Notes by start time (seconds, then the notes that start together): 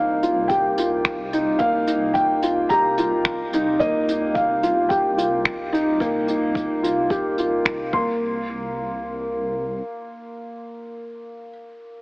Already playing: C2 A#3 D#4 F5
0.23 F4, closed hi-hat
0.48 G4 G5, kick, closed hi-hat
0.78 F4, closed hi-hat
1.05 finger snap, kick, closed hi-hat
1.33 D#4, closed hi-hat
1.59 A#3 F5, kick, closed hi-hat
1.87 D#4, closed hi-hat
2.14 G5, kick, closed hi-hat
2.42 F4, closed hi-hat
2.69 G4 A#5, kick, closed hi-hat
2.98 F4, closed hi-hat
3.25 finger snap, kick, closed hi-hat
3.53 D#4, closed hi-hat
3.79 A#3 D#5, kick, closed hi-hat
4.09 D#4, closed hi-hat
4.34 F5, kick, closed hi-hat
4.63 F4, closed hi-hat
4.89 G4 G5, kick, closed hi-hat
5.17 F4, closed hi-hat
5.45 finger snap, kick, closed hi-hat
5.73 D#4, closed hi-hat
6.00 A#3, kick, closed hi-hat
6.28 D#4, closed hi-hat
6.55 kick, closed hi-hat
6.83 F4, closed hi-hat
7.10 G4, kick, closed hi-hat
7.38 F4, closed hi-hat
7.65 finger snap, kick, closed hi-hat
7.93 C2 A#3 C6, kick